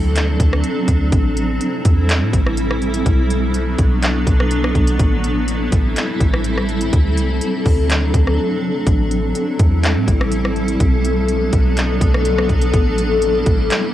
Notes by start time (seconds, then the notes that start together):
Already playing: D2 F#3 C4 D4 A4
0.15 clap, closed hi-hat
0.40 D2, kick, closed hi-hat
0.53 cross-stick
0.64 closed hi-hat
0.88 D2, kick, closed hi-hat
1.12 A1 G3 E4, kick, closed hi-hat
1.37 closed hi-hat
1.61 closed hi-hat
1.85 E2, kick, closed hi-hat
2.09 clap, closed hi-hat
2.21 A2
2.33 A1, kick, closed hi-hat
2.46 cross-stick
2.57 closed hi-hat
2.71 cross-stick
2.82 closed hi-hat
2.94 closed hi-hat
3.06 B1 F#3 B3 D4, kick, closed hi-hat
3.30 closed hi-hat
3.54 closed hi-hat
3.79 B1, kick, closed hi-hat
4.03 clap, closed hi-hat
4.27 B1, kick, closed hi-hat
4.40 cross-stick
4.51 closed hi-hat
4.64 cross-stick
4.75 B1, kick, closed hi-hat
4.87 closed hi-hat
4.99 A1 G3 C4 E4 A4, kick, closed hi-hat
5.24 closed hi-hat
5.48 closed hi-hat
5.72 A1, kick, closed hi-hat
5.96 clap, closed hi-hat
6.20 A1, kick, closed hi-hat
6.34 cross-stick
6.44 closed hi-hat
6.58 cross-stick
6.69 closed hi-hat
6.81 closed hi-hat
6.93 D2 F#3 D4, kick, closed hi-hat
7.17 C2, closed hi-hat
7.41 closed hi-hat
7.66 D2, kick, open hi-hat
7.90 clap, closed hi-hat
8.14 D2, kick, closed hi-hat
8.27 cross-stick
8.86 A1 G3 C4 E4 A4, kick, closed hi-hat
9.11 closed hi-hat
9.35 closed hi-hat
9.59 E2, kick, closed hi-hat
9.83 clap, closed hi-hat
9.95 A2
10.08 A1, kick, closed hi-hat
10.21 cross-stick
10.31 closed hi-hat
10.45 cross-stick
10.56 closed hi-hat
10.68 closed hi-hat
10.80 B1 F#3 B3 D4, kick, closed hi-hat
11.05 closed hi-hat
11.28 closed hi-hat
11.53 B1, kick, closed hi-hat
11.77 clap, closed hi-hat
12.01 B1, kick, closed hi-hat
12.14 cross-stick
12.25 closed hi-hat
12.38 cross-stick
12.49 B1, kick, closed hi-hat
12.62 closed hi-hat
12.74 A1 G3 C4 E4, kick, closed hi-hat
12.98 closed hi-hat
13.22 closed hi-hat
13.46 A1, kick, closed hi-hat
13.70 clap, closed hi-hat